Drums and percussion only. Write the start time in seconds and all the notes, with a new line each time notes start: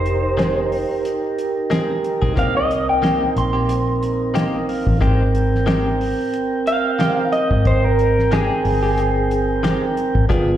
0.06 closed hi-hat
0.39 snare, closed hi-hat
0.72 open hi-hat
1.05 closed hi-hat
1.39 closed hi-hat
1.71 snare, closed hi-hat
2.04 closed hi-hat
2.22 kick
2.37 kick, closed hi-hat
2.71 closed hi-hat
3.03 snare, closed hi-hat
3.37 closed hi-hat
3.69 closed hi-hat
4.03 closed hi-hat
4.36 snare, closed hi-hat
4.69 open hi-hat
4.87 kick
5.02 kick, closed hi-hat
5.35 closed hi-hat
5.55 snare
5.67 snare, closed hi-hat
6.01 open hi-hat
6.34 closed hi-hat
6.67 closed hi-hat
7.00 snare, closed hi-hat
7.33 closed hi-hat
7.51 kick
7.65 kick, closed hi-hat
7.99 closed hi-hat
8.19 snare
8.32 snare, closed hi-hat
8.65 open hi-hat
8.98 closed hi-hat
9.31 closed hi-hat
9.64 snare, closed hi-hat
9.97 closed hi-hat
10.15 kick
10.30 kick, closed hi-hat